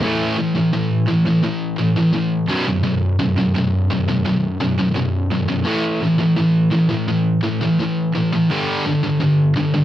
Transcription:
0.03 0.36 A2 medium
0.03 0.36 E3 medium
0.03 0.37 A3 loud
0.38 0.55 A2 medium
0.38 0.55 E3 medium
0.56 0.71 A2 medium
0.56 0.71 E3 medium
0.73 1.05 A2 medium
0.73 1.05 E3 loud
1.07 1.25 A2 medium
1.07 1.24 E3 medium
1.25 1.42 A2 medium
1.25 1.43 E3 medium
1.43 1.75 A2 medium
1.43 1.76 E3 medium
1.79 1.96 A2 medium
1.79 1.96 E3 medium
1.97 2.14 A2 medium
1.97 2.15 E3 medium
2.15 2.46 A2 medium
2.15 2.47 E3 loud
2.50 2.65 B1 loud
2.50 2.65 F#2 loud
2.50 2.66 B2 loud
2.68 2.82 B1 medium
2.68 2.82 F#2 medium
2.83 3.16 B1 medium
2.83 3.16 F#2 medium
3.19 3.35 B1 medium
3.19 3.35 F#2 medium
3.36 3.53 B1 medium
3.36 3.54 F#2 medium
3.54 3.87 B1 medium
3.54 3.87 F#2 loud
3.90 4.07 B1 medium
3.90 4.07 F#2 medium
4.08 4.24 B1 medium
4.08 4.24 F#2 medium
4.25 4.57 B1 medium
4.25 4.57 F#2 medium
4.61 4.77 B1 medium
4.61 4.77 F#2 medium
4.78 4.93 B1 medium
4.78 4.94 F#2 medium
4.94 5.27 B1 medium
4.94 5.28 F#2 medium
5.31 5.48 B1 medium
5.31 5.47 F#2 medium
5.48 5.66 B1 medium
5.48 5.67 F#2 medium
5.67 6.00 A2 loud
5.67 6.00 E3 loud
5.67 6.01 A3 loud
6.01 6.19 A2 medium
6.01 6.19 E3 medium
6.20 6.35 A2 medium
6.20 6.35 E3 medium
6.36 6.69 A2 medium
6.36 6.69 E3 loud
6.71 6.89 A2 medium
6.71 6.89 E3 medium
6.90 7.07 A2 medium
6.90 7.06 E3 medium
7.08 7.40 A2 medium
7.08 7.40 E3 medium
7.44 7.61 A2 medium
7.44 7.61 E3 medium
7.62 7.80 A2 medium
7.62 7.80 E3 medium
7.82 8.12 A2 medium
7.82 8.13 E3 medium
8.15 8.32 A2 medium
8.15 8.31 E3 medium
8.33 8.49 A2 medium
8.33 8.50 E3 medium
8.50 8.83 G2 medium
8.50 8.84 D3 loud
8.50 8.84 G3 loud
8.86 9.02 G2 medium
8.86 9.02 D3 medium
9.03 9.20 G2 medium
9.03 9.20 D3 medium
9.21 9.53 G2 medium
9.21 9.53 D3 loud
9.57 9.73 G2 medium
9.57 9.73 D3 medium
9.74 9.84 G2 medium
9.74 9.84 D3 medium

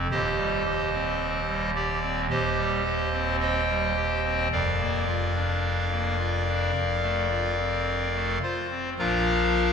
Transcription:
0.11 2.28 D#1 medium
0.11 2.28 D#2 medium
0.11 0.63 G4 loud
0.11 1.70 C5 loud
0.11 1.70 D#5 loud
0.38 0.63 G3 medium
0.65 0.90 G4 medium
0.93 1.41 C4 medium
1.47 1.71 G3 medium
1.76 1.99 G4 medium
1.76 2.21 D5 loud
2.02 2.26 C4 medium
2.30 4.47 D#1 medium
2.30 4.47 D#2 medium
2.30 2.83 G4 medium
2.30 3.36 C5 medium
2.30 3.36 D#5 loud
2.57 2.81 G3 medium
2.85 3.09 G4 medium
3.13 3.62 C4 medium
3.40 4.48 C5 medium
3.40 4.48 D#5 medium
3.40 4.48 G5 loud
3.68 3.93 G3 medium
3.96 4.21 G4 medium
4.25 4.48 C4 soft
4.52 6.72 F1 medium
4.52 6.71 F2 medium
4.52 8.38 A#4 medium
4.52 8.38 D5 medium
4.52 8.38 F5 loud
4.80 5.04 A#3 soft
5.07 5.32 F4 soft
5.35 5.85 D4 soft
5.91 6.16 A#3 soft
6.19 6.44 F4 soft
6.47 6.71 D4 soft
6.76 8.38 F1 medium
6.76 8.38 F2 medium
7.02 7.27 A3 soft
7.30 7.55 F4 medium
7.59 8.08 C4 soft
8.14 8.38 A3 soft
8.43 8.67 F4 medium
8.43 8.90 C5 medium
8.43 8.90 C6 medium
8.70 8.94 C4 soft
8.99 9.73 A#1 medium
8.99 9.73 A#2 medium
8.99 9.73 F3 medium
8.99 9.73 D4 medium
8.99 9.73 F4 medium
8.99 9.73 A#4 medium
8.99 9.73 F5 medium
8.99 9.73 A#5 loud

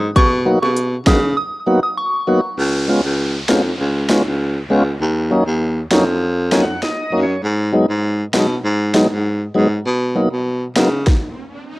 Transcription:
0.16 0.52 B2 loud
0.16 0.26 C#6 loud
0.16 kick loud
0.16 closed hi-hat medium
0.16 high bongo medium
0.45 0.59 F#3 medium
0.45 0.59 A#3 medium
0.45 0.59 B3 medium
0.45 0.59 D#4 medium
0.45 0.59 F#4 medium
0.62 0.97 B2 medium
0.62 0.71 C#6 medium
0.62 high bongo medium
0.77 closed hi-hat medium
1.06 1.35 C#3 loud
1.06 1.19 F#3 medium
1.06 1.19 A#3 medium
1.06 1.20 B3 medium
1.06 1.20 D#4 medium
1.06 1.20 F#4 medium
1.06 1.17 D#6 medium
1.06 kick medium
1.06 snare loud
1.06 high bongo medium
1.06 low bongo medium
1.37 1.47 D#6 medium
1.67 1.80 F#3 medium
1.67 1.80 A#3 medium
1.67 1.80 B3 medium
1.67 1.80 D#4 medium
1.67 1.80 F#4 medium
1.83 1.92 D#6 medium
1.98 2.41 C#6 medium
2.27 2.40 F#3 medium
2.27 2.41 A#3 medium
2.27 2.41 B3 medium
2.27 2.41 D#4 medium
2.27 2.41 F#4 medium
2.58 2.94 C#2 loud
2.58 downlifter medium
2.88 3.01 G#3 medium
2.88 3.01 B3 medium
2.88 3.02 C#4 medium
2.88 3.02 F4 medium
3.04 3.39 C#2 medium
3.48 3.72 F2 medium
3.48 3.62 G#3 medium
3.48 3.62 B3 medium
3.48 3.62 C#4 medium
3.48 3.62 F4 medium
3.48 snare loud
3.79 4.15 C#2 loud
4.09 4.22 G#3 medium
4.09 4.22 B3 medium
4.09 4.23 C#4 medium
4.09 4.23 F4 medium
4.09 snare loud
4.26 4.60 C#2 medium
4.70 4.94 C#2 medium
4.70 4.83 G#3 medium
4.70 4.83 B3 medium
4.70 4.83 C#4 medium
4.70 4.84 F4 loud
5.00 5.36 D#2 loud
5.30 5.43 F#3 medium
5.30 5.44 A#3 medium
5.30 5.44 C#4 medium
5.30 5.44 D#4 medium
5.47 5.81 D#2 medium
5.91 6.78 F2 loud
5.91 6.04 F#3 medium
5.91 6.04 A#3 medium
5.91 6.05 C#4 medium
5.91 6.05 D#4 medium
5.91 snare loud
6.51 6.65 F#3 medium
6.51 6.65 A#3 medium
6.51 6.65 C#4 medium
6.51 6.65 D#4 medium
6.51 6.61 G#5 medium
6.51 snare loud
6.62 6.81 F#5 medium
6.83 7.20 D#5 medium
6.83 snare medium
7.12 7.36 F#2 medium
7.12 7.25 F#3 medium
7.12 7.25 A#3 medium
7.12 7.26 C#4 medium
7.12 7.26 D#4 loud
7.23 7.42 C#5 medium
7.43 7.79 G#2 loud
7.72 7.86 F#3 medium
7.72 7.86 G#3 medium
7.72 7.86 B3 medium
7.72 7.86 D#4 medium
7.89 8.24 G#2 medium
8.33 8.58 B2 medium
8.33 8.47 F#3 medium
8.33 8.47 G#3 medium
8.33 8.47 B3 medium
8.33 8.47 D#4 medium
8.33 snare loud
8.64 9.00 G#2 loud
8.94 9.07 F#3 medium
8.94 9.07 G#3 medium
8.94 9.08 B3 medium
8.94 9.08 D#4 medium
8.94 snare loud
9.11 9.45 G#2 medium
9.54 9.79 G#2 medium
9.54 9.68 F#3 medium
9.54 9.68 G#3 medium
9.54 9.68 B3 medium
9.54 9.68 D#4 loud
9.86 10.21 B2 loud
9.86 riser medium
10.15 10.28 F#3 medium
10.15 10.29 A#3 medium
10.15 10.29 B3 medium
10.15 10.29 D#4 medium
10.32 10.66 B2 medium
10.76 11.05 C#3 medium
10.76 10.89 F#3 medium
10.76 10.89 A#3 medium
10.76 10.89 B3 medium
10.76 10.90 D#4 medium
10.76 snare loud
11.07 kick loud
11.07 snare medium

